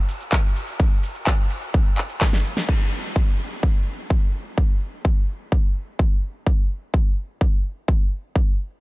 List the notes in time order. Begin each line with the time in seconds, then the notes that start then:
0.09 open hi-hat, shaker
0.21 closed hi-hat, shaker
0.32 kick, clap, closed hi-hat, shaker
0.44 closed hi-hat
0.56 open hi-hat, shaker
0.68 closed hi-hat, shaker
0.80 kick, closed hi-hat, shaker
0.92 closed hi-hat
1.03 open hi-hat, shaker
1.15 closed hi-hat, shaker
1.27 kick, clap, closed hi-hat, shaker
1.39 closed hi-hat
1.51 open hi-hat, shaker
1.62 closed hi-hat, shaker
1.74 kick, closed hi-hat, shaker
1.86 closed hi-hat
1.98 clap, open hi-hat, shaker
2.10 closed hi-hat, shaker
2.21 kick, snare, clap, closed hi-hat, shaker
2.33 snare, closed hi-hat
2.45 open hi-hat, shaker
2.57 snare, closed hi-hat, shaker
2.69 kick, crash
3.16 kick
3.63 kick
4.10 kick
4.58 kick
5.05 kick
5.52 kick
5.99 kick
6.47 kick
6.94 kick
7.41 kick
7.88 kick
8.36 kick